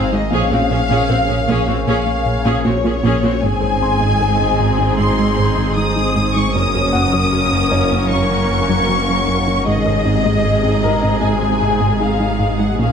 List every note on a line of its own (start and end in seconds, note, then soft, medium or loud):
0.00 0.33 G#1 medium
0.00 0.11 C4 medium
0.00 0.32 C4 medium
0.00 0.31 D#4 medium
0.00 0.11 G#4 medium
0.00 3.43 G#4 medium
0.00 0.32 C5 medium
0.00 0.11 F5 medium
0.12 0.20 G#2 soft
0.12 0.24 G#3 medium
0.12 0.21 A#3 soft
0.12 0.24 D#4 soft
0.12 0.21 F#4 soft
0.12 0.32 D#5 medium
0.31 3.44 A#1 medium
0.31 0.39 A#1 medium
0.31 0.40 A#2 medium
0.31 0.44 A#2 medium
0.31 0.43 A#3 medium
0.31 3.43 A#3 medium
0.31 3.43 C#4 medium
0.31 0.50 C#4 medium
0.31 0.50 G#4 medium
0.31 3.43 C#5 medium
0.31 1.85 F5 medium
0.51 0.63 A#2 soft
0.51 0.59 A#2 soft
0.51 0.60 C4 soft
0.51 0.59 F#4 soft
0.51 0.63 G#4 medium
0.70 0.78 A#1 soft
0.70 0.78 A#2 soft
0.70 0.83 A#2 medium
0.70 0.82 C#4 soft
0.70 0.79 C#4 soft
0.70 0.79 G#4 soft
0.89 0.98 A#2 medium
0.89 1.02 A#2 medium
0.89 1.01 A#3 medium
0.89 1.08 C#4 medium
0.89 1.08 G#4 medium
1.09 1.17 A#1 soft
1.09 1.21 A#2 medium
1.09 1.18 A#2 soft
1.09 1.17 C4 soft
1.09 1.17 F#4 soft
1.09 1.21 G#4 medium
1.29 1.41 A#2 medium
1.29 1.37 A#2 soft
1.29 1.40 C#4 medium
1.29 1.37 C#4 soft
1.29 1.37 G#4 soft
1.48 1.56 A#1 medium
1.48 1.60 A#2 medium
1.48 1.57 A#2 medium
1.48 1.60 A#3 medium
1.48 1.66 C#4 medium
1.48 1.66 G#4 medium
1.67 1.80 A#2 medium
1.67 1.76 A#2 soft
1.67 1.75 C4 soft
1.67 1.79 C#4 soft
1.67 1.76 F#4 soft
1.86 1.95 A#1 medium
1.86 1.99 A#2 medium
1.86 1.95 A#2 medium
1.86 1.99 A#3 medium
1.86 2.05 C#4 medium
1.86 2.05 G#4 medium
1.86 2.63 F5 medium
2.07 2.18 A#3 medium
2.26 2.38 A#2 medium
2.45 2.53 A#2 medium
2.45 2.58 A#2 medium
2.45 2.57 A#3 medium
2.45 2.63 C#4 medium
2.45 2.64 G#4 medium
2.64 2.73 A#1 soft
2.64 2.73 A#2 soft
2.64 2.77 A#3 medium
2.64 2.73 C4 soft
2.64 2.76 F4 medium
2.64 2.73 F#4 soft
2.64 3.41 C#5 medium
2.84 2.92 A#2 soft
2.84 2.97 A#3 medium
2.84 2.93 C#4 soft
2.84 2.96 F4 medium
2.84 2.93 G#4 soft
3.03 3.12 A#1 medium
3.03 3.12 A#2 medium
3.03 3.16 A#2 medium
3.03 3.15 A#3 medium
3.03 3.22 C#4 medium
3.03 3.22 G#4 medium
3.23 3.31 A#2 soft
3.23 3.35 A#3 medium
3.23 3.31 C4 medium
3.23 3.35 F4 soft
3.23 3.31 F#4 medium
3.42 6.56 G#1 medium
3.42 6.51 G#1 medium
3.42 6.51 G#2 medium
3.42 3.55 G#2 medium
3.42 3.54 G#3 medium
3.42 6.55 G#3 medium
3.42 6.50 C4 medium
3.42 6.55 D#4 medium
3.42 6.50 G#4 medium
3.42 6.51 G#4 medium
3.42 6.55 C5 medium
3.42 4.98 G#5 medium
3.61 3.75 G#2 medium
3.61 3.73 G#4 medium
3.81 3.94 G#2 medium
3.81 3.93 C4 medium
3.81 6.12 C6 soft
4.00 4.14 G#2 medium
4.00 4.12 G#3 medium
4.20 4.33 G#2 medium
4.20 4.32 G#4 medium
4.40 4.53 G#2 medium
4.40 4.52 C4 medium
4.59 4.72 G#2 medium
4.59 4.71 G#3 medium
4.79 4.92 G#2 medium
4.79 4.91 C4 medium
4.97 5.11 G#2 medium
4.97 5.10 G#3 medium
4.97 5.75 C6 medium
5.19 5.31 G#3 medium
5.39 5.51 G#2 medium
5.57 5.70 G#2 medium
5.57 5.69 G#3 medium
5.75 5.89 G#3 medium
5.75 5.88 D#4 medium
5.75 6.33 D#6 medium
5.96 6.09 G#3 medium
5.96 6.08 D#4 medium
6.16 6.28 G#2 medium
6.16 6.28 G#3 medium
6.36 6.47 G#3 medium
6.36 6.47 D#4 soft
6.36 6.55 C#6 medium
6.54 9.68 F#1 medium
6.54 9.62 F#1 medium
6.54 9.63 F#2 medium
6.54 6.67 F#2 medium
6.54 6.67 F#3 medium
6.54 9.67 A#3 medium
6.54 9.62 C#4 medium
6.54 9.67 C#4 medium
6.54 9.67 F#4 medium
6.54 9.62 A#4 medium
6.54 9.67 C#5 medium
6.54 8.07 D#6 loud
6.75 6.87 F#2 medium
6.75 6.86 F#4 medium
6.93 7.06 F#2 medium
6.93 7.06 A#3 medium
6.93 9.23 F#5 soft
7.13 7.25 F#2 medium
7.13 7.25 F#3 medium
7.33 7.45 F#2 medium
7.33 7.44 F#4 medium
7.52 7.64 F#2 medium
7.52 7.64 A#3 medium
7.72 7.84 F#2 medium
7.72 7.83 F#3 medium
7.72 10.01 C#5 soft
7.92 8.04 F#2 medium
7.92 8.03 A#3 soft
8.11 8.23 F#2 medium
8.11 8.23 F#3 medium
8.11 9.63 C#6 medium
8.31 8.42 F#3 medium
8.50 8.62 F#2 medium
8.69 8.81 F#2 medium
8.69 8.81 F#3 medium
8.89 9.01 F#3 medium
8.89 9.00 C#4 medium
9.08 9.21 F#3 medium
9.08 9.19 C#4 medium
9.28 9.40 F#2 medium
9.28 9.39 F#3 medium
9.47 9.59 F#3 medium
9.47 9.59 C#4 soft
9.66 12.80 G#1 medium
9.66 12.74 G#1 medium
9.66 12.74 G#2 medium
9.66 9.79 G#2 medium
9.66 12.79 C3 medium
9.66 12.75 C3 medium
9.66 9.78 G#3 medium
9.66 12.78 G#3 medium
9.66 12.78 D#4 medium
9.66 12.92 G#4 medium
9.66 11.19 D#5 medium
9.86 9.98 G#2 medium
9.86 9.98 G#4 medium
10.06 10.18 G#2 medium
10.06 10.17 C4 medium
10.25 10.38 G#2 medium
10.25 10.37 G#3 medium
10.44 10.57 G#2 medium
10.44 10.56 G#4 medium
10.63 10.76 G#2 medium
10.63 10.75 C4 medium
10.82 10.96 G#2 medium
10.82 10.94 G#3 medium
10.82 12.92 A#4 soft
10.82 12.92 A#5 soft
11.03 11.16 G#2 medium
11.03 11.14 C4 medium
11.22 11.35 G#2 medium
11.22 11.34 G#3 medium
11.22 12.00 G#5 medium
11.43 11.54 G#3 medium
11.62 11.74 G#2 medium
11.81 11.93 G#2 medium
11.81 11.92 G#3 medium
12.00 12.12 G#3 soft
12.00 12.12 D#4 soft
12.00 12.59 F5 medium
12.20 12.32 G#3 medium
12.20 12.31 D#4 medium
12.39 12.51 G#2 medium
12.39 12.51 G#3 medium
12.59 12.71 G#3 medium
12.59 12.71 D#4 soft
12.59 12.78 F#5 medium
12.78 12.92 A#1 medium
12.78 12.92 A#2 medium
12.78 12.91 A#2 medium
12.78 12.92 F3 medium
12.78 12.90 A#3 medium
12.78 12.92 A#3 medium
12.78 12.92 C#4 medium
12.78 12.92 C#4 soft
12.78 12.92 F5 medium